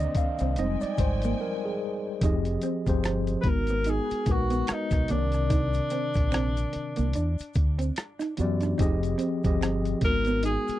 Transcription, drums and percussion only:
0.15 kick, closed hi-hat, shaker
0.39 closed hi-hat, shaker
0.56 closed hi-hat, shaker
0.81 closed hi-hat, shaker
0.98 kick, closed hi-hat, shaker
1.22 closed hi-hat, shaker
2.21 kick, closed hi-hat, shaker
2.45 closed hi-hat, shaker
2.62 closed hi-hat, shaker
2.87 kick, closed hi-hat, shaker
3.04 finger snap, cross-stick, closed hi-hat, shaker
3.27 closed hi-hat, shaker
3.43 kick, closed hi-hat
3.67 closed hi-hat, shaker
3.84 closed hi-hat, shaker
4.10 closed hi-hat, shaker
4.26 kick, closed hi-hat, shaker
4.50 closed hi-hat, shaker
4.67 finger snap, cross-stick, closed hi-hat, shaker
4.91 kick, cross-stick, closed hi-hat, shaker
5.08 closed hi-hat, shaker
5.32 cross-stick, closed hi-hat, shaker
5.50 kick, closed hi-hat, shaker
5.74 closed hi-hat, shaker
5.90 closed hi-hat, shaker
6.14 kick, closed hi-hat, shaker
6.32 finger snap, cross-stick, closed hi-hat, shaker
6.57 closed hi-hat, shaker
6.73 closed hi-hat
6.96 closed hi-hat, shaker
7.13 closed hi-hat, shaker
7.39 closed hi-hat, shaker
7.54 kick, closed hi-hat, shaker
7.79 closed hi-hat, shaker
7.96 finger snap, cross-stick, closed hi-hat, shaker
8.20 cross-stick, closed hi-hat, shaker
8.37 closed hi-hat, shaker
8.61 cross-stick, closed hi-hat, shaker
8.79 kick, closed hi-hat, shaker
9.03 closed hi-hat, shaker
9.19 closed hi-hat, shaker
9.44 kick, closed hi-hat, shaker
9.63 finger snap, cross-stick, closed hi-hat, shaker
9.85 closed hi-hat, shaker
10.01 kick, closed hi-hat
10.25 closed hi-hat, shaker
10.43 closed hi-hat, shaker
10.68 closed hi-hat, shaker

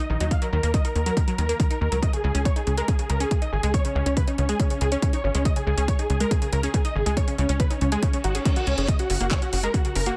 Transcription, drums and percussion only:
0.20 closed hi-hat
0.31 kick, closed hi-hat
0.42 closed hi-hat
0.63 closed hi-hat
0.74 kick, closed hi-hat
0.85 closed hi-hat
0.96 closed hi-hat
1.06 closed hi-hat
1.17 kick, closed hi-hat
1.28 closed hi-hat
1.38 closed hi-hat
1.49 closed hi-hat
1.60 kick, closed hi-hat
1.71 closed hi-hat
1.92 closed hi-hat
2.03 kick, closed hi-hat
2.13 closed hi-hat
2.35 closed hi-hat
2.45 kick, closed hi-hat
2.56 closed hi-hat
2.67 closed hi-hat
2.78 closed hi-hat
2.88 kick, closed hi-hat
2.99 closed hi-hat
3.10 closed hi-hat
3.20 closed hi-hat
3.31 kick, closed hi-hat
3.42 closed hi-hat
3.63 closed hi-hat
3.74 kick, closed hi-hat
3.85 closed hi-hat
4.06 closed hi-hat
4.17 kick, closed hi-hat
4.28 closed hi-hat
4.38 closed hi-hat
4.49 closed hi-hat
4.60 kick, closed hi-hat
4.70 closed hi-hat
4.81 closed hi-hat
4.92 closed hi-hat
5.02 kick, closed hi-hat
5.13 closed hi-hat
5.35 closed hi-hat
5.45 kick, closed hi-hat
5.56 closed hi-hat
5.78 closed hi-hat
5.88 kick, closed hi-hat
5.99 closed hi-hat
6.10 closed hi-hat
6.20 closed hi-hat
6.31 kick, closed hi-hat
6.42 closed hi-hat
6.53 closed hi-hat
6.63 closed hi-hat
6.74 kick, closed hi-hat
6.85 closed hi-hat
7.06 closed hi-hat
7.17 kick, closed hi-hat
7.28 closed hi-hat
7.38 closed hi-hat
7.49 closed hi-hat
7.60 kick, closed hi-hat
7.71 closed hi-hat
7.81 closed hi-hat
7.92 closed hi-hat
8.03 kick, closed hi-hat
8.13 closed hi-hat
8.24 closed hi-hat
8.35 closed hi-hat
8.45 kick, closed hi-hat
8.56 closed hi-hat
8.67 closed hi-hat
8.78 closed hi-hat
8.88 kick, closed hi-hat
8.99 closed hi-hat
9.10 open hi-hat
9.21 closed hi-hat
9.31 kick, clap, closed hi-hat
9.42 closed hi-hat
9.53 open hi-hat
9.63 closed hi-hat
9.74 kick, closed hi-hat
9.85 closed hi-hat
9.96 open hi-hat
10.06 closed hi-hat

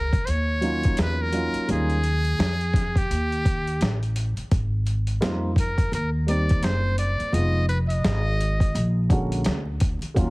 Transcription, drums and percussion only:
0.13 kick, closed hi-hat
0.27 closed hi-hat
0.62 closed hi-hat
0.83 kick, closed hi-hat
0.97 snare, closed hi-hat
1.33 closed hi-hat
1.54 closed hi-hat
1.69 closed hi-hat
1.90 closed hi-hat
2.04 closed hi-hat
2.25 closed hi-hat
2.40 snare, closed hi-hat
2.61 closed hi-hat
2.74 kick, snare, closed hi-hat
2.96 kick, closed hi-hat
3.11 closed hi-hat
3.32 closed hi-hat
3.45 kick, closed hi-hat
3.67 closed hi-hat
3.81 snare, closed hi-hat
4.03 closed hi-hat
4.16 closed hi-hat
4.37 closed hi-hat
4.51 kick, closed hi-hat
4.87 closed hi-hat
5.07 closed hi-hat
5.22 snare, closed hi-hat
5.56 kick, closed hi-hat
5.78 kick, closed hi-hat
5.93 closed hi-hat
6.28 closed hi-hat
6.49 kick, closed hi-hat
6.63 snare, closed hi-hat
6.98 closed hi-hat
7.20 closed hi-hat
7.34 closed hi-hat
7.69 closed hi-hat
7.90 closed hi-hat
8.04 snare, closed hi-hat
8.41 closed hi-hat
8.60 kick, closed hi-hat
8.75 closed hi-hat
9.10 kick, closed hi-hat
9.32 closed hi-hat
9.44 snare, closed hi-hat
9.80 kick, closed hi-hat
10.02 closed hi-hat
10.16 kick, closed hi-hat

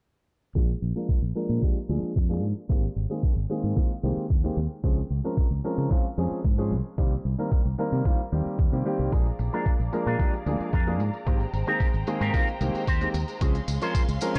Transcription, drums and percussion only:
0.55 kick
1.09 kick
1.62 kick
2.16 kick
2.70 kick
3.23 kick
3.77 kick
4.30 kick
4.84 kick
5.37 kick
5.91 kick
6.45 kick
6.98 kick
7.52 kick
8.05 kick
8.59 kick
9.12 kick, closed hi-hat, tambourine
9.26 closed hi-hat, tambourine
9.39 closed hi-hat, tambourine
9.53 closed hi-hat, tambourine
9.66 kick, closed hi-hat, tambourine
9.80 closed hi-hat, tambourine
9.93 closed hi-hat, tambourine
10.07 closed hi-hat, tambourine
10.19 kick, closed hi-hat, tambourine
10.33 closed hi-hat, tambourine
10.46 closed hi-hat, tambourine
10.60 closed hi-hat, tambourine
10.73 kick, closed hi-hat, tambourine
10.87 closed hi-hat, tambourine
11.00 closed hi-hat, tambourine
11.13 closed hi-hat, tambourine
11.27 kick, closed hi-hat, tambourine
11.40 closed hi-hat, tambourine
11.53 closed hi-hat, tambourine
11.67 closed hi-hat, tambourine
11.80 kick, closed hi-hat, tambourine
11.93 closed hi-hat, tambourine
12.07 closed hi-hat, tambourine
12.21 closed hi-hat, tambourine
12.34 kick, closed hi-hat, tambourine
12.47 closed hi-hat, tambourine
12.61 closed hi-hat, tambourine
12.75 closed hi-hat, tambourine
12.87 kick, closed hi-hat, tambourine
13.01 closed hi-hat, tambourine
13.14 closed hi-hat, tambourine
13.28 closed hi-hat, tambourine
13.41 kick, closed hi-hat, tambourine
13.55 closed hi-hat, tambourine
13.68 closed hi-hat, tambourine
13.82 closed hi-hat, tambourine
13.95 kick, closed hi-hat, tambourine
14.09 closed hi-hat, tambourine
14.21 closed hi-hat, tambourine
14.35 closed hi-hat, tambourine

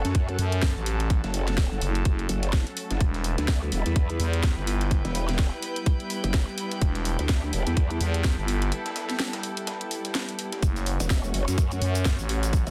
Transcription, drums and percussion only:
0.05 snare, closed hi-hat
0.15 kick, closed hi-hat
0.29 closed hi-hat
0.39 closed hi-hat, open hi-hat
0.52 closed hi-hat
0.62 kick, snare, closed hi-hat
0.86 closed hi-hat, open hi-hat
1.00 snare, closed hi-hat
1.10 kick, closed hi-hat
1.24 snare, closed hi-hat
1.34 closed hi-hat, open hi-hat
1.48 snare, closed hi-hat
1.58 kick, snare, closed hi-hat
1.82 closed hi-hat, open hi-hat
1.95 closed hi-hat
2.05 kick, closed hi-hat
2.19 closed hi-hat
2.29 closed hi-hat, open hi-hat
2.43 closed hi-hat
2.53 kick, snare, closed hi-hat
2.67 closed hi-hat
2.77 closed hi-hat, open hi-hat
2.91 snare, closed hi-hat
3.01 kick, closed hi-hat
3.14 snare, closed hi-hat
3.24 closed hi-hat, open hi-hat
3.38 snare, closed hi-hat
3.48 kick, snare, closed hi-hat
3.72 closed hi-hat, open hi-hat
3.86 snare, closed hi-hat
3.96 kick, closed hi-hat
4.10 closed hi-hat
4.20 closed hi-hat, open hi-hat
4.33 closed hi-hat
4.43 kick, snare, closed hi-hat
4.67 closed hi-hat, open hi-hat
4.81 snare, closed hi-hat
4.91 kick, closed hi-hat
5.05 snare, closed hi-hat
5.15 closed hi-hat, open hi-hat
5.29 snare, closed hi-hat
5.39 kick, snare, closed hi-hat
5.62 closed hi-hat, open hi-hat
5.76 closed hi-hat
5.86 kick, closed hi-hat
6.00 closed hi-hat
6.10 closed hi-hat, open hi-hat
6.24 closed hi-hat
6.34 kick, snare, closed hi-hat
6.58 closed hi-hat, open hi-hat
6.71 snare, closed hi-hat
6.82 kick, closed hi-hat
6.95 snare, closed hi-hat
7.05 closed hi-hat, open hi-hat
7.19 snare, closed hi-hat
7.29 kick, snare, closed hi-hat
7.53 closed hi-hat, open hi-hat
7.67 snare, closed hi-hat
7.77 kick, closed hi-hat
7.91 closed hi-hat
8.01 closed hi-hat, open hi-hat
8.14 closed hi-hat
8.24 kick, snare, closed hi-hat
8.48 closed hi-hat, open hi-hat
8.62 snare, closed hi-hat
8.72 closed hi-hat
8.86 snare, closed hi-hat
8.96 snare, closed hi-hat, open hi-hat
9.10 snare, closed hi-hat
9.20 snare, closed hi-hat
9.33 snare, closed hi-hat
9.43 open hi-hat
9.57 closed hi-hat
9.67 snare, closed hi-hat
9.81 closed hi-hat
9.91 closed hi-hat, open hi-hat
10.05 snare, closed hi-hat
10.15 snare, closed hi-hat
10.29 closed hi-hat
10.39 closed hi-hat, open hi-hat
10.52 snare, closed hi-hat
10.63 kick, closed hi-hat, shaker
10.76 snare, closed hi-hat, shaker
10.86 closed hi-hat, open hi-hat
11.00 snare, closed hi-hat, shaker
11.10 kick, snare, closed hi-hat, shaker
11.24 shaker
11.34 closed hi-hat, open hi-hat
11.48 snare, closed hi-hat, shaker
11.58 kick, closed hi-hat, shaker
11.71 closed hi-hat, shaker
11.82 closed hi-hat, open hi-hat
11.95 closed hi-hat, shaker
12.05 kick, snare, closed hi-hat, shaker
12.19 shaker
12.29 closed hi-hat, open hi-hat
12.43 snare, closed hi-hat, shaker
12.53 kick, closed hi-hat, shaker
12.67 snare, closed hi-hat, shaker

